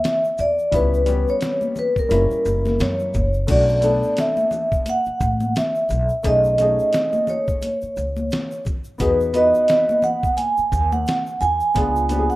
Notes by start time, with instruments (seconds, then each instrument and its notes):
Already playing: vibraphone E5
0.04 snare, closed hi-hat, shaker
0.24 shaker
0.38 upright bass E2, vibraphone D5, low conga, shaker
0.59 shaker
0.71 upright bass C#2, grand piano G3 B3 C#4 E4, kick, closed hi-hat, shaker
0.75 vibraphone B4
0.94 shaker
1.06 grand piano G3 B3 C#4, closed hi-hat, low conga, shaker
1.08 grand piano G4, shaker
1.28 vibraphone C#5, shaker
1.41 snare, closed hi-hat, shaker
1.61 high conga, shaker
1.76 vibraphone B4, low conga, shaker
1.96 vibraphone A#4, kick, shaker
2.09 upright bass F#1, grand piano G3 A#3 C#4 E4, closed hi-hat, high conga, shaker
2.31 muted upright bass stroke, shaker
2.45 upright bass F#1, shaker
2.65 snare, high conga, shaker
2.80 upright bass F#2, vibraphone C#5, snare, closed hi-hat, shaker
3.00 shaker
3.14 upright bass F#1, kick, high conga, low conga, shaker
3.34 shaker
3.47 upright bass B1, grand piano A3 C#4 D4 F#4, vibraphone D5, kick, closed hi-hat, crash, shaker
3.69 shaker
3.81 grand piano A3 B3 D4 A4, closed hi-hat, low conga, shaker
4.03 shaker
4.17 vibraphone E5, snare, closed hi-hat, shaker
4.37 high conga, shaker
4.51 low conga, shaker
4.72 kick, shaker
4.86 vibraphone F#5, closed hi-hat, high conga, shaker
5.05 muted upright bass stroke, shaker
5.20 upright bass A1, kick, shaker
5.40 high conga, shaker
5.55 vibraphone E5, snare, closed hi-hat, shaker
5.75 shaker
5.89 upright bass B1, low conga, shaker
6.09 shaker
6.23 upright bass B1, grand piano A3 C#4 D#4 G#4, kick, closed hi-hat, shaker
6.27 vibraphone D#5
6.44 shaker
6.58 grand piano A3 C#4 D#4 G#4, closed hi-hat, low conga, shaker
6.79 shaker
6.93 snare, closed hi-hat, shaker
7.13 high conga, shaker
7.27 vibraphone C#5, low conga, shaker
7.48 kick, shaker
7.62 closed hi-hat, high conga, shaker
7.82 muted upright bass stroke, shaker
7.96 upright bass C#2, shaker
8.17 high conga, shaker
8.31 snare, closed hi-hat, shaker
8.51 shaker
8.65 kick, low conga, shaker
8.84 shaker
8.98 upright bass E2, grand piano B3 D#4 F#4 G#4, vibraphone B4, kick, closed hi-hat, shaker
9.20 shaker
9.33 grand piano B3 D#4 F#4 B4, vibraphone D#5, closed hi-hat, low conga, shaker
9.54 shaker
9.68 snare, closed hi-hat, shaker
9.89 high conga, shaker
10.02 vibraphone F#5, low conga, shaker
10.23 kick, shaker
10.37 vibraphone G#5, closed hi-hat, high conga, shaker
10.57 muted upright bass stroke, shaker
10.72 upright bass D#2, kick, shaker
10.92 vibraphone F#5, high conga, shaker
11.07 snare, closed hi-hat, shaker
11.26 shaker
11.40 upright bass E2, vibraphone G#5, low conga, shaker
11.60 shaker
11.74 upright bass C#2, grand piano B3 D4 F4 G#4, kick, closed hi-hat, shaker
11.96 shaker
12.09 grand piano F3 B3 D4 G4, closed hi-hat, high conga, shaker
12.19 grand piano G#4
12.30 vibraphone F#5, shaker